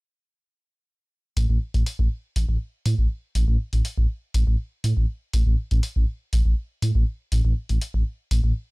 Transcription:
1.37 1.46 A1 medium
1.37 open hi-hat medium
1.49 1.58 A1 medium
1.74 1.83 A1 medium
1.74 open hi-hat medium
1.86 open hi-hat loud
1.99 2.08 A1 medium
2.36 2.45 A1 medium
2.36 open hi-hat medium
2.49 2.57 A1 medium
2.86 2.95 A2 medium
2.86 open hi-hat medium
2.98 3.07 A1 medium
3.35 3.44 A1 medium
3.35 open hi-hat medium
3.48 3.57 A1 medium
3.73 3.81 A1 medium
3.73 open hi-hat medium
3.85 open hi-hat loud
3.98 4.06 A1 medium
4.34 4.43 A1 medium
4.34 open hi-hat loud
4.47 4.56 A1 medium
4.84 4.93 A2 medium
4.84 open hi-hat loud
4.97 5.05 A1 medium
5.33 5.43 A1 medium
5.33 open hi-hat loud
5.46 5.55 A1 medium
5.71 5.80 A1 medium
5.71 open hi-hat medium
5.83 open hi-hat loud
5.96 6.05 A1 medium
6.33 6.42 A1 medium
6.33 open hi-hat loud
6.46 6.54 A1 medium
6.82 6.91 A2 medium
6.82 open hi-hat loud
6.95 7.04 A1 medium
7.32 7.41 A1 medium
7.32 open hi-hat loud
7.45 7.53 A1 medium
7.69 7.78 A1 medium
7.69 open hi-hat medium
7.81 open hi-hat loud
7.94 8.03 A1 medium
8.31 8.40 A1 medium
8.31 open hi-hat loud
8.44 8.52 A1 medium

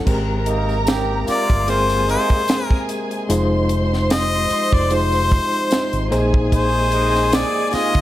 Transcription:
0.06 1.24 G#1 loud
0.06 3.26 C3 medium
0.06 6.07 G#3 medium
0.06 1.19 G#3 medium
0.06 3.26 A#3 medium
0.06 1.20 C4 medium
0.06 1.20 G4 medium
0.06 3.26 A#4 medium
0.06 1.65 A#4 medium
0.06 1.20 A#4 medium
0.06 1.65 A#5 medium
0.06 kick medium
0.06 crash medium
0.06 tambourine soft
0.46 0.79 C3 medium
0.46 0.79 A#3 medium
0.46 0.79 D#4 medium
0.46 closed hi-hat medium
0.69 tambourine soft
0.87 1.20 D#3 medium
0.87 1.20 C4 medium
0.87 1.20 G4 medium
0.87 snare loud
0.87 closed hi-hat medium
0.87 tambourine medium
1.27 2.04 C3 medium
1.27 2.04 A#3 medium
1.27 2.04 F4 loud
1.27 1.71 D5 loud
1.27 muted fingered electric bass stroke soft
1.27 snare soft
1.27 closed hi-hat medium
1.27 tambourine medium
1.50 2.15 G1 medium
1.50 kick medium
1.50 tambourine soft
1.68 2.81 G#3 medium
1.68 2.81 C4 medium
1.68 2.81 G#4 medium
1.68 3.27 G#4 medium
1.68 2.82 C5 medium
1.68 2.09 C5 loud
1.68 3.27 G#5 medium
1.68 closed hi-hat medium
1.68 tambourine soft
1.90 tambourine medium
2.08 2.41 C3 medium
2.08 2.41 A#3 medium
2.08 2.41 D#4 medium
2.08 2.65 C5 medium
2.08 closed hi-hat medium
2.08 tambourine soft
2.30 kick medium
2.48 snare loud
2.48 closed hi-hat medium
2.48 tambourine medium
2.65 2.86 A#4 medium
2.71 kick medium
2.89 closed hi-hat medium
2.89 tambourine medium
3.11 closed hi-hat soft
3.29 4.47 F1 medium
3.29 8.01 C3 medium
3.29 6.09 F3 medium
3.29 4.42 G#3 medium
3.29 4.42 D#4 medium
3.29 8.01 D#4 medium
3.29 4.43 F4 medium
3.29 4.43 C5 medium
3.29 6.09 C5 medium
3.29 6.09 C6 loud
3.29 closed hi-hat medium
3.29 tambourine soft
3.69 closed hi-hat medium
3.93 snare soft
4.10 4.75 D#5 loud
4.10 snare loud
4.10 closed hi-hat medium
4.10 tambourine medium
4.50 muted fingered electric bass stroke soft
4.50 closed hi-hat medium
4.50 tambourine medium
4.72 5.38 F1 medium
4.72 4.95 D5 medium
4.72 kick medium
4.72 tambourine soft
4.90 6.04 G#3 medium
4.90 6.04 D#4 medium
4.90 6.04 F4 medium
4.90 6.04 C5 medium
4.90 6.13 C5 medium
4.90 closed hi-hat medium
4.90 tambourine soft
5.12 tambourine medium
5.31 kick medium
5.31 closed hi-hat medium
5.31 tambourine soft
5.53 tambourine soft
5.71 snare loud
5.71 closed hi-hat medium
5.71 tambourine medium
5.93 6.08 G#1 medium
5.93 closed hi-hat medium
6.11 7.43 A#1 medium
6.11 8.01 G#3 medium
6.11 7.41 A#3 medium
6.11 8.01 A#3 medium
6.11 7.42 D#4 medium
6.11 7.42 G#4 medium
6.11 8.01 G#4 medium
6.11 7.42 C5 loud
6.11 8.01 G#5 medium
6.11 closed hi-hat medium
6.11 tambourine medium
6.34 kick medium
6.52 7.37 C5 medium
6.52 kick medium
6.52 closed hi-hat medium
6.52 tambourine soft
6.92 7.25 C3 medium
6.92 7.25 G#3 medium
6.92 7.25 D#4 medium
6.92 closed hi-hat medium
7.15 snare soft
7.33 7.65 F3 medium
7.33 7.65 D#4 medium
7.33 7.65 G#4 medium
7.33 7.69 D5 loud
7.33 snare loud
7.33 closed hi-hat medium
7.33 tambourine loud
7.69 8.01 C3 loud
7.69 8.01 G#3 medium
7.69 8.01 F4 loud
7.69 7.76 D5 medium
7.69 muted fingered electric bass stroke soft
7.69 closed hi-hat medium
7.69 tambourine medium
7.73 8.01 D#5 loud
7.73 snare soft
7.95 8.01 D2 medium
7.95 kick medium

